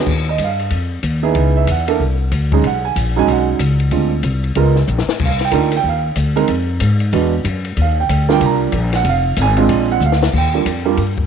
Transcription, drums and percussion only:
0.06 kick medium
0.06 crash medium
0.38 kick soft
0.38 hi-hat pedal medium
0.38 ride medium
0.59 ride soft
0.70 kick soft
0.70 ride medium
1.03 kick soft
1.03 hi-hat pedal medium
1.03 ride medium
1.35 kick soft
1.35 ride medium
1.67 kick soft
1.67 hi-hat pedal medium
1.67 ride medium
1.88 ride medium
2.00 kick soft
2.31 kick soft
2.31 hi-hat pedal medium
2.31 ride medium
2.52 kick medium
2.52 ride medium
2.64 ride medium
2.96 kick soft
2.96 hi-hat pedal medium
2.96 ride medium
3.28 kick soft
3.28 ride medium
3.59 kick soft
3.59 hi-hat pedal medium
3.59 ride medium
3.80 ride soft
3.91 kick soft
3.91 ride medium
4.23 kick soft
4.23 hi-hat pedal medium
4.23 ride medium
4.44 ride soft
4.55 kick soft
4.55 ride medium
4.76 snare soft
4.87 hi-hat pedal medium
4.98 snare medium
5.09 snare medium
5.20 kick medium
5.20 crash medium
5.30 snare soft
5.39 snare soft
5.39 ride soft
5.51 kick soft
5.51 hi-hat pedal medium
5.51 ride medium
5.72 ride medium
5.84 kick soft
6.16 kick soft
6.16 hi-hat pedal medium
6.16 ride medium
6.37 ride medium
6.48 kick soft
6.48 ride medium
6.80 kick soft
6.80 hi-hat pedal medium
6.80 ride medium
7.00 ride medium
7.13 kick soft
7.13 ride medium
7.45 kick soft
7.45 hi-hat pedal medium
7.45 ride medium
7.65 ride medium
7.77 kick soft
7.77 ride medium
8.09 kick soft
8.09 hi-hat pedal medium
8.09 ride medium
8.29 snare medium
8.41 kick soft
8.41 ride medium
8.72 kick soft
8.72 hi-hat pedal medium
8.72 ride medium
8.93 snare medium
8.93 ride medium
9.05 kick soft
9.05 ride medium
9.36 kick soft
9.36 hi-hat pedal medium
9.36 ride medium
9.57 ride medium
9.69 kick soft
9.69 ride medium
10.01 hi-hat pedal medium
10.12 snare medium
10.23 snare medium
10.33 kick medium
10.33 crash medium
10.65 kick soft
10.65 hi-hat pedal medium
10.65 ride medium
10.97 kick soft
10.97 ride medium
11.18 kick medium

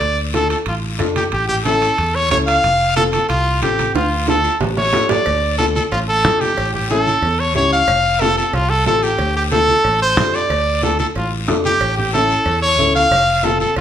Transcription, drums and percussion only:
0.01 high conga soft
0.01 high timbale medium
0.01 long guiro medium
0.34 high conga medium
0.34 high timbale medium
0.34 short guiro medium
0.50 high timbale medium
0.50 short guiro medium
0.66 high timbale medium
0.66 long guiro medium
0.84 high conga soft
0.99 high conga medium
0.99 high timbale medium
0.99 short guiro medium
1.16 high conga medium
1.16 high timbale medium
1.16 short guiro medium
1.32 high conga soft
1.32 high timbale medium
1.32 long guiro medium
1.49 low conga medium
1.65 high conga medium
1.65 high timbale medium
1.65 short guiro medium
1.82 high timbale medium
1.82 short guiro medium
1.98 high timbale medium
1.98 long guiro medium
2.15 high conga soft
2.31 high conga medium
2.31 low conga medium
2.31 high timbale medium
2.31 low timbale medium
2.31 short guiro medium
2.47 high timbale medium
2.47 short guiro medium
2.63 high conga soft
2.63 high timbale medium
2.63 long guiro medium
2.96 high conga medium
2.96 high timbale medium
2.96 short guiro medium
3.12 high conga medium
3.12 high timbale medium
3.12 short guiro medium
3.29 high timbale medium
3.29 long guiro medium
3.47 high conga soft
3.62 high conga medium
3.62 high timbale medium
3.62 short guiro medium
3.78 high conga medium
3.78 high timbale medium
3.78 short guiro medium
3.95 high conga soft
3.95 high timbale medium
3.95 long guiro medium
4.27 high conga medium
4.27 high timbale medium
4.27 short guiro medium
4.44 short guiro medium
4.61 high conga medium
4.61 low timbale medium
4.61 long guiro medium
4.77 high conga medium
4.77 low timbale medium
4.93 low conga medium
4.93 low timbale medium
4.93 short guiro medium
5.09 low conga medium
5.09 low timbale medium
5.09 short guiro medium
5.26 cowbell loud
5.26 high conga soft
5.26 long guiro medium
5.59 high conga medium
5.59 short guiro medium
5.75 high conga medium
5.75 short guiro medium
5.92 cowbell medium
5.92 long guiro medium
6.09 high conga soft
6.25 high conga medium
6.25 short guiro medium
6.41 high conga medium
6.41 short guiro medium
6.57 cowbell loud
6.57 high conga soft
6.57 long guiro medium
6.74 low conga medium
6.90 high conga medium
6.90 short guiro medium
7.07 high conga medium
7.07 short guiro medium
7.22 cowbell medium
7.22 long guiro medium
7.39 high conga soft
7.55 high conga medium
7.55 low conga medium
7.55 short guiro medium
7.72 short guiro medium
7.88 cowbell loud
7.88 high conga soft
7.88 long guiro medium
8.21 high conga medium
8.21 short guiro medium
8.38 short guiro medium
8.53 cowbell medium
8.53 long guiro medium
8.71 high conga soft
8.86 high conga medium
8.86 low timbale medium
8.86 short guiro medium
9.03 short guiro medium
9.19 cowbell loud
9.19 high conga soft
9.19 long guiro medium
9.52 high conga loud
9.52 short guiro medium
9.68 high conga medium
9.68 short guiro medium
9.84 cowbell medium
9.84 long guiro medium
10.02 high conga soft
10.18 high conga medium
10.18 low conga medium
10.18 low timbale medium
10.18 short guiro medium
10.34 short guiro medium
10.50 cowbell loud
10.50 high conga soft
10.50 long guiro medium
10.83 high conga loud
10.83 short guiro medium
10.99 high conga medium
10.99 short guiro medium
11.15 cowbell medium
11.15 long guiro medium
11.33 high conga soft
11.48 high conga medium
11.48 low timbale medium
11.48 short guiro medium
11.64 high conga medium
11.64 short guiro medium
11.80 cowbell loud
11.80 high conga soft
11.80 long guiro medium
11.98 low conga medium
12.13 high conga medium
12.13 short guiro medium
12.29 short guiro medium
12.46 cowbell medium
12.46 long guiro medium
12.64 high conga soft
12.78 high conga medium
12.78 low conga medium
12.78 short guiro medium
12.95 high conga medium
12.95 short guiro medium
13.11 cowbell loud
13.11 high conga soft
13.11 long guiro medium
13.44 high conga medium
13.44 short guiro medium
13.60 high conga medium
13.60 short guiro medium
13.76 cowbell medium
13.76 long guiro medium

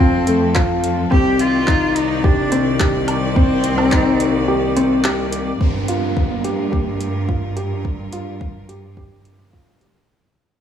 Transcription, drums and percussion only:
0.00 kick loud
0.27 closed hi-hat medium
0.55 kick loud
0.55 clap medium
0.84 closed hi-hat medium
1.12 kick loud
1.39 closed hi-hat medium
1.67 kick loud
1.67 clap medium
1.96 closed hi-hat medium
2.24 kick loud
2.52 closed hi-hat medium
2.80 kick loud
2.80 clap loud
3.08 closed hi-hat medium
3.08 low woodblock medium
3.36 kick loud
3.64 closed hi-hat medium
3.78 low woodblock medium
3.92 kick loud
3.92 clap loud
4.20 closed hi-hat medium
4.77 closed hi-hat medium
5.04 clap loud
5.33 closed hi-hat medium
5.61 kick medium
5.88 closed hi-hat medium
6.17 kick medium
6.44 closed hi-hat medium
6.73 kick loud
7.01 closed hi-hat medium
7.29 kick medium
7.57 closed hi-hat medium
7.85 kick medium
8.13 closed hi-hat medium
8.41 kick loud
8.69 closed hi-hat medium
8.97 kick medium
9.25 closed hi-hat medium
9.53 kick medium
9.81 closed hi-hat medium

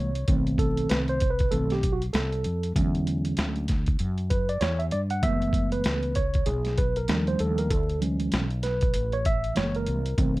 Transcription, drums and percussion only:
0.15 closed hi-hat medium
0.28 kick loud
0.28 closed hi-hat loud
0.47 closed hi-hat soft
0.58 kick medium
0.58 closed hi-hat medium
0.77 closed hi-hat medium
0.89 snare loud
0.89 closed hi-hat medium
1.08 closed hi-hat soft
1.20 kick medium
1.20 closed hi-hat medium
1.39 kick medium
1.39 closed hi-hat medium
1.52 closed hi-hat loud
1.70 snare soft
1.70 closed hi-hat soft
1.83 kick medium
1.83 closed hi-hat medium
2.02 closed hi-hat soft
2.14 snare loud
2.14 closed hi-hat medium
2.32 closed hi-hat soft
2.44 closed hi-hat medium
2.63 closed hi-hat medium
2.76 kick loud
2.76 closed hi-hat medium
2.95 closed hi-hat soft
3.07 closed hi-hat medium
3.25 closed hi-hat medium
3.37 snare loud
3.37 closed hi-hat medium
3.56 closed hi-hat soft
3.68 kick medium
3.68 snare soft
3.68 closed hi-hat medium
3.86 kick medium
3.86 closed hi-hat soft
3.99 closed hi-hat medium
4.18 closed hi-hat soft
4.30 kick medium
4.30 closed hi-hat medium
4.49 closed hi-hat soft
4.61 snare loud
4.61 closed hi-hat medium
4.80 closed hi-hat soft
4.91 closed hi-hat medium
5.10 closed hi-hat medium
5.23 kick loud
5.23 closed hi-hat loud
5.42 closed hi-hat soft
5.53 kick medium
5.53 closed hi-hat medium
5.72 closed hi-hat medium
5.84 snare loud
5.84 closed hi-hat medium
6.03 closed hi-hat soft
6.15 kick medium
6.15 closed hi-hat medium
6.34 kick medium
6.34 closed hi-hat soft
6.46 closed hi-hat medium
6.65 snare soft
6.65 closed hi-hat soft
6.78 kick medium
6.78 closed hi-hat medium
6.96 closed hi-hat soft
7.08 snare loud
7.08 closed hi-hat medium
7.27 closed hi-hat soft
7.39 closed hi-hat medium
7.58 closed hi-hat medium
7.70 kick loud
7.70 closed hi-hat medium
7.89 closed hi-hat soft
8.02 closed hi-hat medium
8.20 closed hi-hat medium
8.32 snare loud
8.32 closed hi-hat medium
8.51 closed hi-hat soft
8.63 snare soft
8.63 closed hi-hat medium
8.81 kick medium
8.81 closed hi-hat medium
8.94 closed hi-hat loud
9.12 closed hi-hat soft
9.25 kick medium
9.25 closed hi-hat medium
9.44 closed hi-hat soft
9.56 snare loud
9.56 closed hi-hat medium
9.75 closed hi-hat soft
9.86 closed hi-hat medium
10.06 closed hi-hat medium
10.18 kick loud
10.18 closed hi-hat medium
10.37 closed hi-hat soft

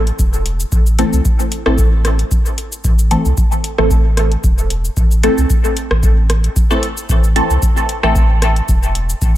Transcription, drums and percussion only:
0.07 closed hi-hat soft
0.19 kick loud
0.19 cabasa medium
0.33 cabasa soft
0.46 closed hi-hat medium
0.60 cabasa soft
0.72 kick loud
0.72 cabasa medium
0.86 cabasa soft
0.99 closed hi-hat medium
1.13 cabasa soft
1.25 kick loud
1.25 cabasa medium
1.40 cabasa soft
1.52 closed hi-hat medium
1.66 cross-stick medium
1.78 kick loud
1.78 cabasa medium
2.05 cross-stick medium
2.05 closed hi-hat medium
2.19 closed hi-hat soft
2.31 kick loud
2.31 cabasa medium
2.46 cabasa soft
2.58 closed hi-hat medium
2.72 cabasa soft
2.84 kick loud
2.84 cabasa medium
2.99 cabasa soft
3.11 closed hi-hat medium
3.25 cabasa soft
3.37 kick loud
3.37 cabasa medium
3.52 cabasa soft
3.64 closed hi-hat medium
3.78 cross-stick medium
3.91 kick loud
3.91 cabasa medium
4.17 cross-stick medium
4.17 closed hi-hat medium
4.32 closed hi-hat soft
4.44 kick loud
4.44 cabasa medium
4.58 cabasa soft
4.70 closed hi-hat medium
4.85 cabasa soft
4.97 kick loud
4.97 cabasa medium
5.11 cabasa soft
5.23 closed hi-hat medium
5.38 cabasa soft
5.50 kick loud
5.50 cabasa medium
5.64 cabasa soft
5.77 closed hi-hat medium
5.91 cross-stick medium
6.03 kick loud
6.03 cabasa medium
6.30 cross-stick medium
6.30 closed hi-hat medium
6.44 closed hi-hat soft
6.56 kick loud
6.56 cabasa medium
6.71 cabasa soft
6.83 closed hi-hat medium
6.97 cabasa soft
7.09 kick loud
7.09 cabasa medium
7.24 cabasa soft
7.36 closed hi-hat medium
7.50 cabasa soft
7.62 kick loud
7.62 cabasa medium
7.77 cabasa soft
7.89 closed hi-hat medium
8.03 cross-stick medium
8.16 kick loud
8.16 cabasa medium
8.42 cross-stick medium
8.42 closed hi-hat medium
8.56 closed hi-hat soft
8.69 kick loud
8.69 cabasa medium
8.83 cabasa soft
8.95 closed hi-hat medium
9.10 cabasa soft
9.22 kick loud
9.22 cabasa medium

